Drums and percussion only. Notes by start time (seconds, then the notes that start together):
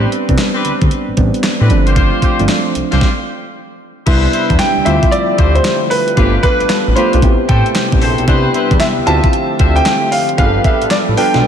0.12 closed hi-hat
0.29 kick, closed hi-hat
0.38 snare, clap, closed hi-hat
0.65 closed hi-hat
0.82 kick, closed hi-hat
0.91 closed hi-hat
1.17 kick, closed hi-hat
1.34 closed hi-hat
1.44 snare, clap, closed hi-hat
1.70 closed hi-hat
1.87 closed hi-hat
1.96 kick, closed hi-hat
2.22 kick, closed hi-hat
2.39 closed hi-hat
2.49 snare, clap, closed hi-hat
2.75 closed hi-hat
2.92 snare, closed hi-hat
3.01 kick, snare
4.07 kick, closed hi-hat, crash
4.33 closed hi-hat
4.50 kick, closed hi-hat
4.59 snare, clap, closed hi-hat
4.86 closed hi-hat
5.03 kick, closed hi-hat
5.12 closed hi-hat
5.38 kick, closed hi-hat
5.55 closed hi-hat
5.65 snare, clap, closed hi-hat
5.91 open hi-hat
6.08 closed hi-hat
6.17 kick, closed hi-hat
6.43 kick, closed hi-hat
6.60 closed hi-hat
6.70 snare, clap, closed hi-hat
6.97 closed hi-hat
7.13 closed hi-hat
7.22 kick, closed hi-hat
7.49 kick, closed hi-hat
7.66 closed hi-hat
7.75 snare, clap, closed hi-hat
7.92 kick
8.02 open hi-hat
8.18 closed hi-hat
8.28 kick, closed hi-hat
8.54 closed hi-hat
8.71 kick, closed hi-hat
8.80 snare, clap, closed hi-hat
9.07 closed hi-hat
9.24 kick, closed hi-hat
9.33 closed hi-hat
9.59 kick, closed hi-hat
9.76 closed hi-hat
9.86 snare, clap, closed hi-hat
10.12 open hi-hat
10.29 closed hi-hat
10.38 kick, closed hi-hat
10.64 kick, closed hi-hat
10.82 closed hi-hat
10.91 snare, clap, closed hi-hat
11.17 open hi-hat
11.34 snare, closed hi-hat